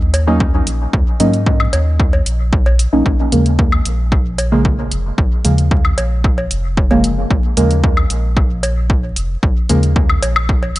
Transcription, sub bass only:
0, 0, Header, 1, 2, 480
1, 0, Start_track
1, 0, Tempo, 530973
1, 844, Time_signature, 4, 2, 24, 8
1, 9757, End_track
2, 0, Start_track
2, 0, Title_t, "Sub bass"
2, 0, Program_c, 0, 38
2, 0, Note_on_c, 0, 39, 93
2, 558, Note_off_c, 0, 39, 0
2, 604, Note_on_c, 0, 34, 84
2, 787, Note_off_c, 0, 34, 0
2, 844, Note_on_c, 0, 39, 95
2, 936, Note_off_c, 0, 39, 0
2, 1084, Note_on_c, 0, 44, 77
2, 1518, Note_off_c, 0, 44, 0
2, 1564, Note_on_c, 0, 39, 95
2, 1998, Note_off_c, 0, 39, 0
2, 2043, Note_on_c, 0, 34, 98
2, 2278, Note_off_c, 0, 34, 0
2, 2284, Note_on_c, 0, 34, 93
2, 2598, Note_off_c, 0, 34, 0
2, 2645, Note_on_c, 0, 34, 92
2, 2735, Note_off_c, 0, 34, 0
2, 2764, Note_on_c, 0, 34, 93
2, 2856, Note_off_c, 0, 34, 0
2, 3003, Note_on_c, 0, 39, 77
2, 3438, Note_off_c, 0, 39, 0
2, 3484, Note_on_c, 0, 34, 97
2, 4398, Note_off_c, 0, 34, 0
2, 4444, Note_on_c, 0, 29, 83
2, 4627, Note_off_c, 0, 29, 0
2, 4683, Note_on_c, 0, 34, 96
2, 4776, Note_off_c, 0, 34, 0
2, 4924, Note_on_c, 0, 39, 78
2, 5358, Note_off_c, 0, 39, 0
2, 5404, Note_on_c, 0, 34, 93
2, 5838, Note_off_c, 0, 34, 0
2, 5884, Note_on_c, 0, 29, 99
2, 6558, Note_off_c, 0, 29, 0
2, 6604, Note_on_c, 0, 34, 93
2, 6696, Note_off_c, 0, 34, 0
2, 6843, Note_on_c, 0, 39, 80
2, 7278, Note_off_c, 0, 39, 0
2, 7323, Note_on_c, 0, 34, 95
2, 8238, Note_off_c, 0, 34, 0
2, 8284, Note_on_c, 0, 29, 83
2, 8467, Note_off_c, 0, 29, 0
2, 8524, Note_on_c, 0, 34, 95
2, 8616, Note_off_c, 0, 34, 0
2, 8764, Note_on_c, 0, 39, 78
2, 9198, Note_off_c, 0, 39, 0
2, 9243, Note_on_c, 0, 34, 96
2, 9678, Note_off_c, 0, 34, 0
2, 9723, Note_on_c, 0, 32, 92
2, 9757, Note_off_c, 0, 32, 0
2, 9757, End_track
0, 0, End_of_file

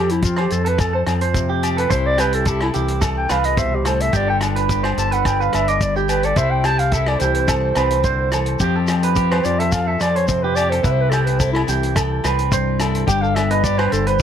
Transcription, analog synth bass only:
0, 0, Header, 1, 2, 480
1, 0, Start_track
1, 0, Key_signature, 0, "major"
1, 0, Tempo, 558659
1, 1645, Time_signature, 4, 2, 24, 8
1, 12218, End_track
2, 0, Start_track
2, 0, Title_t, "Analog synth bass"
2, 0, Program_c, 0, 38
2, 0, Note_on_c, 0, 41, 94
2, 408, Note_off_c, 0, 41, 0
2, 446, Note_on_c, 0, 41, 85
2, 891, Note_off_c, 0, 41, 0
2, 919, Note_on_c, 0, 41, 90
2, 1607, Note_off_c, 0, 41, 0
2, 1639, Note_on_c, 0, 36, 104
2, 2327, Note_off_c, 0, 36, 0
2, 2370, Note_on_c, 0, 36, 85
2, 2812, Note_off_c, 0, 36, 0
2, 2842, Note_on_c, 0, 36, 95
2, 3528, Note_off_c, 0, 36, 0
2, 3553, Note_on_c, 0, 31, 102
2, 4243, Note_off_c, 0, 31, 0
2, 4275, Note_on_c, 0, 31, 86
2, 4723, Note_off_c, 0, 31, 0
2, 4763, Note_on_c, 0, 31, 95
2, 5447, Note_off_c, 0, 31, 0
2, 5470, Note_on_c, 0, 36, 95
2, 6160, Note_off_c, 0, 36, 0
2, 6196, Note_on_c, 0, 36, 93
2, 6643, Note_off_c, 0, 36, 0
2, 6672, Note_on_c, 0, 36, 93
2, 7361, Note_off_c, 0, 36, 0
2, 7394, Note_on_c, 0, 41, 95
2, 8083, Note_off_c, 0, 41, 0
2, 8125, Note_on_c, 0, 41, 93
2, 8568, Note_off_c, 0, 41, 0
2, 8596, Note_on_c, 0, 41, 91
2, 9285, Note_off_c, 0, 41, 0
2, 9318, Note_on_c, 0, 36, 102
2, 10007, Note_off_c, 0, 36, 0
2, 10042, Note_on_c, 0, 36, 90
2, 10489, Note_off_c, 0, 36, 0
2, 10524, Note_on_c, 0, 36, 92
2, 11211, Note_off_c, 0, 36, 0
2, 11239, Note_on_c, 0, 31, 95
2, 11929, Note_off_c, 0, 31, 0
2, 11967, Note_on_c, 0, 31, 100
2, 12218, Note_off_c, 0, 31, 0
2, 12218, End_track
0, 0, End_of_file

